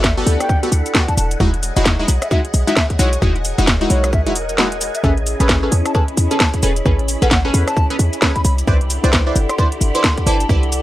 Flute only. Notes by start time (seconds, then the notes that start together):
0.04 E5
0.40 G5
1.09 A5
1.17 A5
2.22 E5
2.31 E5
2.67 E5
2.99 C#5
3.90 C#5
4.13 E5
4.27 E5
4.95 E5
5.04 E5
5.86 A5
5.95 A5
6.31 A5
7.22 F#5
7.31 F#5
7.67 A5
8.35 B5
8.45 B5
9.49 C6
9.59 C6
9.95 C6
10.27 A5